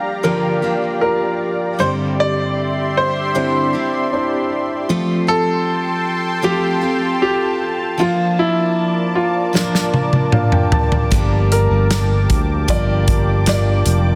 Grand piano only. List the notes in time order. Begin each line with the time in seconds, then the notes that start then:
Already playing: G4
0.24 A#4
1.01 A#4
1.80 C5
2.20 D5
2.97 C5
5.28 A4
6.44 G4
7.22 G4
8.00 F4
8.39 E4
9.15 F4
11.52 A#4
12.70 D5
13.49 D5